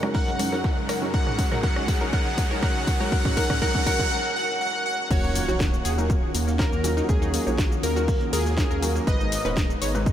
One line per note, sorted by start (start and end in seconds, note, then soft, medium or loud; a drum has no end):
0.00 1.10 F#2 medium
0.00 4.07 C#3 medium
0.00 0.10 F#3 medium
0.00 1.10 G#3 medium
0.00 0.10 C#4 medium
0.00 0.09 C#4 medium
0.00 4.07 D#4 medium
0.00 0.10 D#4 medium
0.00 0.10 A#4 medium
0.00 1.10 A#5 medium
0.00 cross-stick medium
0.00 riser medium
0.00 high conga medium
0.14 0.49 F#3 medium
0.14 0.49 C#4 medium
0.14 0.49 D#4 medium
0.14 0.22 A#4 loud
0.14 0.49 A#4 medium
0.14 0.80 F#5 loud
0.14 kick loud
0.14 open hi-hat medium
0.28 0.34 C#4 medium
0.28 closed hi-hat soft
0.28 high conga medium
0.39 0.47 C#4 medium
0.39 cross-stick soft
0.39 open hi-hat loud
0.39 high conga medium
0.52 0.60 F#3 medium
0.52 0.60 C#4 medium
0.52 0.60 D#4 medium
0.52 0.59 A#4 medium
0.52 0.60 C#5 medium
0.52 snare medium
0.64 0.71 C#4 medium
0.64 kick loud
0.64 cross-stick soft
0.64 snare loud
0.64 shaker medium
0.77 0.84 C#4 medium
0.88 0.96 A#4 medium
0.88 cross-stick medium
0.88 open hi-hat medium
0.88 shaker medium
1.02 1.09 F#3 medium
1.02 1.09 C#4 medium
1.02 1.09 D#4 medium
1.02 1.09 A#4 medium
1.02 snare soft
1.14 4.08 C#2 medium
1.14 1.48 F#3 medium
1.14 4.08 G#3 medium
1.14 1.48 C#4 medium
1.14 1.48 D#4 medium
1.14 4.08 G#4 medium
1.14 1.48 A#4 medium
1.14 1.21 A#4 medium
1.14 1.62 F#5 loud
1.14 kick loud
1.14 shaker medium
1.27 1.33 C#4 medium
1.27 cross-stick soft
1.27 mid tom medium
1.39 1.46 C#4 medium
1.39 kick loud
1.39 open hi-hat loud
1.52 1.59 F#3 medium
1.52 1.59 C#4 medium
1.52 1.59 D#4 medium
1.52 1.58 A#4 medium
1.52 1.59 C#5 loud
1.52 cross-stick soft
1.52 snare soft
1.52 mid tom medium
1.63 1.98 F#3 medium
1.63 1.98 C#4 medium
1.63 1.98 D#4 medium
1.63 1.98 A#4 medium
1.63 1.71 A#4 loud
1.63 2.11 F#5 loud
1.63 kick loud
1.63 snare loud
1.63 shaker medium
1.76 1.83 C#4 medium
1.76 cross-stick medium
1.88 1.95 C#4 medium
1.88 kick loud
1.88 open hi-hat medium
2.01 2.08 F#3 medium
2.01 2.08 C#4 medium
2.01 2.08 D#4 medium
2.01 2.08 A#4 medium
2.01 2.08 C#5 loud
2.13 2.48 F#3 medium
2.13 2.48 C#4 medium
2.13 2.48 D#4 medium
2.13 2.48 A#4 medium
2.13 2.20 A#4 loud
2.13 2.61 F#5 loud
2.13 kick loud
2.13 cross-stick soft
2.13 shaker medium
2.26 2.33 C#4 medium
2.38 2.45 C#4 medium
2.38 kick loud
2.38 cross-stick soft
2.38 snare loud
2.38 open hi-hat loud
2.38 high conga medium
2.51 2.58 F#3 medium
2.51 2.58 C#4 medium
2.51 2.58 D#4 medium
2.51 2.57 A#4 medium
2.51 2.58 C#5 loud
2.62 2.97 F#3 medium
2.62 2.97 C#4 medium
2.62 2.97 D#4 medium
2.62 2.97 A#4 medium
2.62 2.70 A#4 loud
2.62 3.10 F#5 loud
2.62 kick loud
2.62 cross-stick medium
2.76 2.82 C#4 medium
2.87 2.95 C#4 medium
2.87 kick loud
2.87 snare soft
2.87 open hi-hat medium
3.00 3.08 F#3 medium
3.00 3.08 C#4 medium
3.00 3.08 D#4 medium
3.00 3.07 A#4 loud
3.00 3.08 C#5 loud
3.00 cross-stick soft
3.00 snare soft
3.00 high conga medium
3.12 3.35 F#3 medium
3.12 3.35 C#4 medium
3.12 3.35 D#4 medium
3.12 3.19 A#4 loud
3.12 3.35 F#5 loud
3.12 kick loud
3.12 shaker medium
3.25 3.32 C#4 medium
3.25 kick medium
3.25 cross-stick soft
3.25 mid tom medium
3.37 3.60 F#3 medium
3.37 3.60 C#4 medium
3.37 3.60 D#4 medium
3.37 3.60 A#4 medium
3.37 3.44 A#4 loud
3.37 3.60 F#5 loud
3.37 kick loud
3.37 snare soft
3.37 open hi-hat loud
3.50 3.56 C#4 medium
3.50 kick medium
3.50 cross-stick medium
3.50 mid tom medium
3.62 3.85 F#3 medium
3.62 3.85 C#4 medium
3.62 3.85 D#4 medium
3.62 3.85 A#4 medium
3.62 3.69 A#4 loud
3.62 3.85 F#5 loud
3.62 kick loud
3.62 snare loud
3.75 3.81 C#4 medium
3.75 kick medium
3.86 4.09 F#3 medium
3.86 4.09 C#4 medium
3.86 4.09 D#4 medium
3.86 4.09 A#4 medium
3.86 3.94 A#4 loud
3.86 4.10 F#5 loud
3.86 kick loud
3.86 cross-stick soft
3.86 open hi-hat medium
4.00 4.06 C#4 medium
4.00 kick loud
4.00 high conga medium
4.11 4.34 F#5 loud
4.36 4.59 F#5 loud
4.61 4.84 F#5 loud
4.86 5.09 F#5 loud
5.11 5.40 D#2 loud
5.11 9.03 D#3 medium
5.11 5.45 F#3 medium
5.11 9.03 A#3 medium
5.11 9.03 C#4 medium
5.11 5.45 C#4 medium
5.11 5.45 D#4 medium
5.11 9.03 F4 medium
5.11 9.03 F#4 medium
5.11 5.18 F#4 loud
5.11 5.45 A#4 medium
5.11 5.76 C#5 loud
5.11 kick loud
5.11 crash loud
5.11 impact medium
5.11 cabasa soft
5.24 5.30 A#3 medium
5.24 cabasa soft
5.35 5.43 A#3 medium
5.35 open hi-hat loud
5.35 cabasa medium
5.48 5.78 A#1 medium
5.48 5.56 F#3 medium
5.48 5.56 C#4 medium
5.48 5.56 D#4 medium
5.48 5.55 F#4 medium
5.48 5.56 C#5 loud
5.48 snare soft
5.48 cabasa soft
5.60 5.67 A#3 medium
5.60 kick loud
5.60 snare loud
5.60 cabasa soft
5.73 5.80 A#3 medium
5.73 cabasa soft
5.85 6.15 D#2 medium
5.85 5.92 G#4 medium
5.85 open hi-hat medium
5.85 cabasa medium
5.98 6.05 F#3 medium
5.98 6.05 A#3 medium
5.98 6.05 C#4 medium
5.98 6.05 D#4 medium
5.98 6.05 A#4 loud
5.98 cabasa soft
6.09 6.17 A#3 medium
6.09 kick loud
6.09 cabasa soft
6.09 shaker medium
6.35 6.64 D#2 loud
6.35 6.42 A#3 medium
6.35 open hi-hat loud
6.35 cabasa medium
6.48 6.54 A#3 medium
6.48 snare medium
6.48 cabasa soft
6.59 6.67 F#3 medium
6.59 6.67 C#4 medium
6.59 6.67 D#4 medium
6.59 7.04 A#4 medium
6.59 6.67 C#5 medium
6.59 kick loud
6.59 snare loud
6.59 cabasa soft
6.59 shaker medium
6.72 7.02 D#2 loud
6.72 6.79 A#3 medium
6.72 cabasa soft
6.84 7.06 F#3 medium
6.84 6.91 A#3 medium
6.84 7.06 C#4 medium
6.84 7.06 D#4 medium
6.84 7.06 A#4 loud
6.84 snare soft
6.84 open hi-hat loud
6.84 cabasa medium
6.97 7.04 D#4 medium
6.97 snare medium
6.97 cabasa soft
7.09 7.39 D#2 loud
7.09 7.44 F#3 medium
7.09 7.16 A#3 medium
7.09 7.44 C#4 medium
7.09 7.44 D#4 medium
7.09 7.74 G#4 loud
7.09 7.44 A#4 medium
7.09 kick loud
7.09 cabasa soft
7.09 shaker medium
7.22 7.28 D#4 loud
7.22 cabasa soft
7.33 7.41 A#3 medium
7.33 snare soft
7.33 open hi-hat loud
7.33 cabasa medium
7.47 7.76 A#1 medium
7.47 7.54 F#3 medium
7.47 7.53 A#3 medium
7.47 7.54 C#4 medium
7.47 7.54 D#4 medium
7.47 7.54 C#5 loud
7.47 cabasa soft
7.58 7.66 F#4 medium
7.58 kick loud
7.58 snare loud
7.58 cabasa soft
7.72 7.78 A#3 medium
7.72 cabasa soft
7.83 8.13 D#2 medium
7.83 7.91 A#3 medium
7.83 8.28 A#4 loud
7.83 open hi-hat loud
7.83 cabasa medium
7.96 8.03 F#3 medium
7.96 8.03 C#4 medium
7.96 8.03 D#4 medium
7.96 8.03 F#4 medium
7.96 8.03 A#4 medium
7.96 cabasa soft
8.08 8.15 A#3 medium
8.08 kick loud
8.08 open hi-hat medium
8.08 cabasa soft
8.21 8.28 A#3 medium
8.21 closed hi-hat soft
8.33 8.63 D#2 loud
8.33 8.98 G#4 loud
8.33 8.40 A#4 loud
8.33 snare loud
8.33 open hi-hat loud
8.33 cabasa medium
8.40 snare medium
8.46 8.52 A#3 medium
8.46 snare loud
8.46 cabasa soft
8.52 snare medium
8.52 shaker medium
8.57 8.66 F#3 medium
8.57 8.65 A#3 medium
8.57 8.66 C#4 medium
8.57 8.66 D#4 medium
8.57 8.66 C#5 medium
8.57 kick loud
8.57 snare loud
8.57 cabasa soft
8.57 shaker medium
8.71 9.00 D#2 loud
8.71 8.77 A#4 medium
8.71 cabasa soft
8.82 9.04 F#3 medium
8.82 8.90 A#3 medium
8.82 9.04 C#4 medium
8.82 9.04 D#4 medium
8.82 9.04 A#4 loud
8.82 open hi-hat loud
8.82 cabasa medium
8.95 9.02 A#3 medium
8.95 snare soft
8.95 cabasa soft
9.07 9.37 G#1 loud
9.07 9.42 G#2 medium
9.07 10.13 G#3 medium
9.07 9.42 G#3 medium
9.07 9.42 B3 medium
9.07 10.13 B3 medium
9.07 10.13 D#4 medium
9.07 9.42 D#4 medium
9.07 9.42 B4 medium
9.07 9.14 B4 loud
9.07 9.72 D#5 loud
9.07 kick loud
9.07 cabasa soft
9.20 9.27 D#4 medium
9.20 cabasa soft
9.32 9.39 D#4 medium
9.32 open hi-hat loud
9.32 cabasa medium
9.45 9.74 D#1 medium
9.45 9.52 G#2 medium
9.45 9.52 G#3 medium
9.45 9.52 B3 medium
9.45 9.52 D#4 medium
9.45 9.52 B4 medium
9.45 9.52 C#5 loud
9.45 snare soft
9.45 cabasa soft
9.57 9.64 D#4 medium
9.57 kick loud
9.57 snare loud
9.57 cabasa soft
9.70 9.76 D#4 medium
9.70 cabasa soft
9.82 10.11 G#1 loud
9.82 9.89 C#5 loud
9.82 open hi-hat loud
9.82 cabasa medium
9.95 10.02 G#2 medium
9.95 10.02 G#3 medium
9.95 10.02 B3 medium
9.95 10.02 D#4 medium
9.95 10.01 D#4 medium
9.95 10.02 B4 medium
9.95 cabasa soft
10.06 10.13 D#4 medium
10.06 kick loud
10.06 cabasa soft
10.06 shaker medium